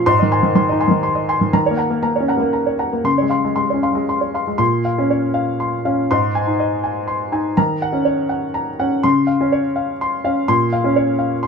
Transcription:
0.06 G#2 C6
0.19 D#3 D#5
0.32 G#5 C6
0.43 D#3
0.55 D#3 C6
0.69 D#4 D#5
0.80 G#5 C6
0.88 D#3
1.03 C6
1.15 D#5
1.29 G#5 C6
1.41 D#3
1.53 D#3 A#5
1.66 C#5
1.71 A#3
1.77 F#5 A#5
1.90 A#3
2.02 A#3 A#5
2.16 C#5
2.20 C#4
2.28 F#5 A#5
2.37 A#3
2.53 A#5
2.66 C#5
2.79 F#5 A#5
2.93 A#3
3.04 C#3 C6
3.18 G#3 C#5
3.29 F5 C6
3.44 G#3
3.55 G#3 C6
3.70 C#4 C#5
3.83 F5 C6
3.92 G#3
4.09 C6
4.21 C#5
4.34 F5 C6
4.47 G#3
4.58 A#2 C6
4.85 F5
4.98 C#4
5.10 C#5
5.34 F5
5.60 C6
5.85 C#4 F5
6.11 G#2 C6
6.35 G#5
6.47 D#4
6.60 D#5
6.84 G#5
7.08 C6
7.32 D#4 G#5
7.57 D#3 A#5
7.82 F#5
7.93 C#4
8.05 C#5
8.29 F#5
8.54 A#5
8.79 C#4 F#5
9.03 C#3 C6
9.27 F5
9.41 C#4
9.52 C#5
9.76 F5
10.01 C6
10.24 C#4 F5
10.48 A#2 C6
10.73 F5
10.84 C#4
10.96 C#5
11.19 F5
11.43 C6

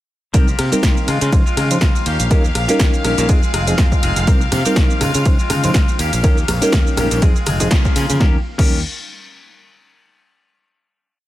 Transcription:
0.33 C2 D#3 G3 A#3 C4 D#4 G4 A#4 F5, kick, closed hi-hat, ride, shaker
0.47 A#3 C4 G4, shaker
0.59 C3, cross-stick, open hi-hat, ride
0.72 G3 A#3 C4 D#4 G4 A#4, muted fingered electric bass stroke, closed hi-hat, shaker
0.83 C2 D#3 A#3 C4, kick, snare, closed hi-hat, ride, shaker
0.97 shaker
1.07 C#3 D#3 G#3 C4 F4, cross-stick, open hi-hat, ride
1.21 C#3 G#3 C4 F4, closed hi-hat, shaker
1.32 C#2 F3 C#4 D#4 C5, kick, closed hi-hat, ride, shaker
1.46 G#3 C4 F4, shaker
1.57 C#3 D#3 G#3 C4 F4, cross-stick, open hi-hat, ride
1.70 F3 G#3 C4 C#4 D#4 F4 C5, closed hi-hat, shaker
1.81 C#2 D#3 G#3 C4 F4, kick, snare, closed hi-hat, ride, shaker
1.95 shaker
2.05 D#2 D#3 A#3 C#4 G4, open hi-hat, ride
2.20 A#1, closed hi-hat, shaker
2.30 D#3 G3 A#3 C#4 D#4 G4 A#4, kick, closed hi-hat, ride, shaker
2.44 A#3 C#4 G4, shaker
2.55 A#1, cross-stick, open hi-hat, ride
2.68 G3 A#3 C#4 D#4 G4 A#4, snare, closed hi-hat, shaker
2.79 D#2 D#3 A#3, kick, snare, closed hi-hat, ride, shaker
2.94 shaker
3.04 A#1 D#3 A#3 C#4 G4, cross-stick, open hi-hat, ride
3.17 A#1 A#3 C#4 G4, closed hi-hat, shaker
3.28 D#3 F3 G#3 C4 D#4 G#4, kick, closed hi-hat, ride, shaker
3.42 G#3 C4 G#4, shaker
3.53 F1 D#3 G#3 C4 G#4, cross-stick, open hi-hat, ride
3.66 F3 G#3 C4 D#4 G#4, closed hi-hat, shaker
3.77 F2 D#3 G#3 C4, kick, snare, closed hi-hat, ride, shaker
3.92 kick, shaker
4.02 F1 D#3 G#3 C4 G#4, open hi-hat, ride
4.16 F1, closed hi-hat, shaker
4.27 C2 D#3 G3 A#3 C4 D#4 G4 A#4, kick, closed hi-hat, ride, tambourine, shaker
4.40 A#3 C4 G4, shaker
4.52 C3, cross-stick, open hi-hat, ride, tambourine, low conga
4.65 G3 A#3 C4 D#4 G4 A#4, muted fingered electric bass stroke, closed hi-hat, tambourine, shaker
4.76 C2 D#3 A#3 C4 G4, kick, snare, closed hi-hat, ride, tambourine, shaker
4.90 shaker
5.00 C#3 D#3 G#3 C4 F4, cross-stick, open hi-hat, ride, tambourine, low conga
5.14 C#3 G#3 C4 F4, closed hi-hat, tambourine, shaker
5.25 C#2 F3 C#4 D#4 C5, kick, closed hi-hat, ride, tambourine, shaker
5.39 G#3 C4 F4, shaker
5.50 C#3 D#3 G#3 C4 F4, cross-stick, open hi-hat, ride, tambourine, high conga
5.63 F3 G#3 C4 C#4 D#4 F4 C5, closed hi-hat, tambourine, low conga, shaker
5.74 C#2 D#3 G#3 C4 F4, kick, snare, closed hi-hat, ride, shaker
5.88 shaker
5.98 D#2 D#3 A#3 C#4 G4, open hi-hat, ride, tambourine
6.12 A#1 A#3 C#4 G4, closed hi-hat, tambourine, shaker
6.23 D#2 D#3 G3 A#3 C#4 D#4 G4 A#4, kick, closed hi-hat, ride, tambourine, shaker
6.37 A#3 C#4 G4, shaker
6.48 A#1, cross-stick, open hi-hat, ride, tambourine, low conga
6.61 G3 A#3 C#4 D#4 G4 A#4, muted fingered electric bass stroke, snare, closed hi-hat, tambourine, shaker
6.72 D#2 D#3 A#3 C#4 G4, kick, snare, closed hi-hat, ride, shaker
6.87 shaker
6.97 A#1 D#3 A#3 C#4 G4, cross-stick, open hi-hat, ride, tambourine, low conga
7.11 A#1 A#3 C#4 G4, closed hi-hat, tambourine, shaker
7.22 F2 D#3 F3 G#3 C4 D#4 G#4, kick, closed hi-hat, ride, shaker
7.35 G#3 C4 G#4, shaker
7.46 F1 D#3 G#3 C4 G#4, cross-stick, open hi-hat, ride, tambourine, high conga
7.60 F3 G#3 C4 D#4 G#4, closed hi-hat, tambourine, low conga, shaker
7.71 C#2 F3 A#3 C#4 G#4, kick, snare, closed hi-hat, ride, shaker
7.85 kick, shaker
7.96 C#3 F3 A#3 C#4 G#4, open hi-hat, ride, tambourine
8.10 C#3, closed hi-hat, tambourine, high conga, shaker
8.20 D#2 G3 A#3 C#4 D#4 G4 A#4, kick, snare
8.58 D#2 G3 A#3 C#4 D#4 G4 A#4, kick, crash

